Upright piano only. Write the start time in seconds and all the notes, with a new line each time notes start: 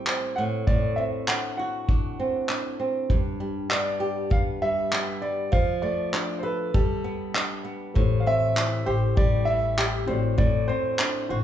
Already playing: G5
0.36 F#5
0.67 D5
0.96 E5
1.27 F#5
1.57 F#5
3.71 D5
4.32 F5
4.62 E5
5.22 D5
5.52 F5
5.82 D5
6.39 C5
6.43 B4
6.74 A4
8.20 F5
8.27 E5
8.86 C5
9.17 D5
9.45 E5
10.08 C5
10.38 D5
10.68 C5
11.29 C5